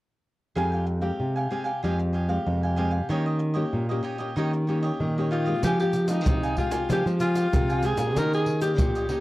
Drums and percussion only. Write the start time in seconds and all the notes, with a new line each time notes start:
5.63 pandeiro, shaker, surdo
5.79 pandeiro, shaker
5.93 pandeiro, shaker
6.08 pandeiro, shaker
6.26 pandeiro, shaker, surdo
6.43 pandeiro, shaker
6.57 pandeiro, surdo
6.71 pandeiro, shaker
6.90 pandeiro, shaker, surdo
7.07 pandeiro, shaker
7.20 pandeiro, shaker
7.35 pandeiro, shaker
7.53 pandeiro, shaker, surdo
7.70 pandeiro, shaker
7.83 pandeiro, shaker
7.97 pandeiro, shaker
8.17 pandeiro, shaker, surdo
8.33 pandeiro, shaker
8.46 pandeiro
8.61 pandeiro, shaker
8.78 pandeiro, shaker, surdo
8.95 pandeiro, shaker
9.09 pandeiro